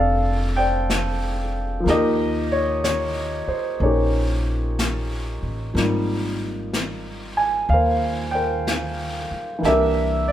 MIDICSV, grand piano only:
0, 0, Header, 1, 2, 480
1, 0, Start_track
1, 0, Tempo, 972447
1, 917, Time_signature, 4, 2, 24, 8
1, 5095, End_track
2, 0, Start_track
2, 0, Title_t, "Grand piano"
2, 0, Program_c, 0, 0
2, 0, Control_c, 0, 64, 127
2, 0, Note_on_c, 0, 55, 43
2, 0, Note_on_c, 0, 60, 38
2, 0, Note_on_c, 0, 62, 40
2, 0, Note_on_c, 0, 65, 38
2, 0, Note_on_c, 0, 69, 49
2, 0, Note_on_c, 0, 74, 48
2, 0, Note_on_c, 0, 77, 65
2, 0, Note_on_c, 0, 81, 74
2, 278, Note_off_c, 0, 74, 0
2, 278, Note_on_c, 0, 79, 76
2, 285, Note_on_c, 0, 72, 44
2, 285, Note_on_c, 0, 74, 42
2, 296, Note_off_c, 0, 77, 0
2, 737, Note_off_c, 0, 79, 0
2, 890, Note_on_c, 0, 53, 52
2, 902, Note_off_c, 0, 55, 0
2, 902, Note_off_c, 0, 72, 0
2, 902, Note_off_c, 0, 74, 0
2, 908, Note_on_c, 0, 58, 48
2, 910, Note_off_c, 0, 69, 0
2, 911, Note_off_c, 0, 60, 0
2, 919, Note_off_c, 0, 62, 0
2, 920, Note_off_c, 0, 65, 0
2, 923, Control_c, 0, 64, 0
2, 925, Note_off_c, 0, 81, 0
2, 926, Note_on_c, 0, 63, 47
2, 933, Note_on_c, 0, 67, 57
2, 937, Note_on_c, 0, 70, 55
2, 937, Note_on_c, 0, 75, 79
2, 1008, Control_c, 0, 64, 127
2, 1226, Note_off_c, 0, 75, 0
2, 1244, Note_on_c, 0, 73, 70
2, 1394, Note_off_c, 0, 73, 0
2, 1402, Note_on_c, 0, 73, 72
2, 1698, Note_off_c, 0, 73, 0
2, 1720, Note_on_c, 0, 72, 56
2, 1865, Note_off_c, 0, 67, 0
2, 1867, Note_off_c, 0, 58, 0
2, 1867, Note_off_c, 0, 70, 0
2, 1868, Note_off_c, 0, 72, 0
2, 1875, Note_on_c, 0, 58, 33
2, 1882, Note_on_c, 0, 61, 29
2, 1883, Note_off_c, 0, 63, 0
2, 1890, Note_on_c, 0, 63, 35
2, 1891, Note_on_c, 0, 73, 56
2, 1900, Note_on_c, 0, 70, 44
2, 1902, Note_on_c, 0, 67, 44
2, 2664, Note_off_c, 0, 73, 0
2, 2825, Note_off_c, 0, 53, 0
2, 2830, Note_off_c, 0, 58, 0
2, 2831, Note_off_c, 0, 67, 0
2, 2831, Note_off_c, 0, 70, 0
2, 2832, Note_on_c, 0, 53, 40
2, 2838, Note_on_c, 0, 58, 41
2, 2840, Note_off_c, 0, 63, 0
2, 2842, Note_off_c, 0, 61, 0
2, 2846, Control_c, 0, 64, 0
2, 2847, Note_on_c, 0, 63, 40
2, 2856, Note_on_c, 0, 55, 44
2, 2936, Control_c, 0, 64, 127
2, 3638, Note_on_c, 0, 80, 64
2, 3788, Note_off_c, 0, 80, 0
2, 3799, Note_on_c, 0, 77, 73
2, 3818, Note_on_c, 0, 70, 50
2, 3819, Note_on_c, 0, 72, 52
2, 4097, Note_off_c, 0, 77, 0
2, 4103, Note_on_c, 0, 79, 65
2, 4113, Note_off_c, 0, 72, 0
2, 4116, Note_off_c, 0, 70, 0
2, 4121, Note_on_c, 0, 72, 43
2, 4123, Note_on_c, 0, 70, 41
2, 4570, Note_off_c, 0, 79, 0
2, 4732, Note_on_c, 0, 52, 49
2, 4740, Note_off_c, 0, 58, 0
2, 4740, Note_off_c, 0, 72, 0
2, 4741, Note_off_c, 0, 70, 0
2, 4748, Note_on_c, 0, 58, 46
2, 4754, Note_off_c, 0, 53, 0
2, 4762, Note_off_c, 0, 63, 0
2, 4765, Control_c, 0, 64, 0
2, 4765, Note_on_c, 0, 76, 79
2, 4766, Note_off_c, 0, 55, 0
2, 4766, Note_on_c, 0, 62, 46
2, 4776, Note_on_c, 0, 67, 51
2, 4776, Note_on_c, 0, 70, 58
2, 4865, Control_c, 0, 64, 127
2, 5059, Note_off_c, 0, 76, 0
2, 5074, Note_on_c, 0, 74, 72
2, 5095, Note_off_c, 0, 52, 0
2, 5095, Note_off_c, 0, 58, 0
2, 5095, Note_off_c, 0, 62, 0
2, 5095, Note_off_c, 0, 67, 0
2, 5095, Note_off_c, 0, 70, 0
2, 5095, Note_off_c, 0, 74, 0
2, 5095, End_track
0, 0, End_of_file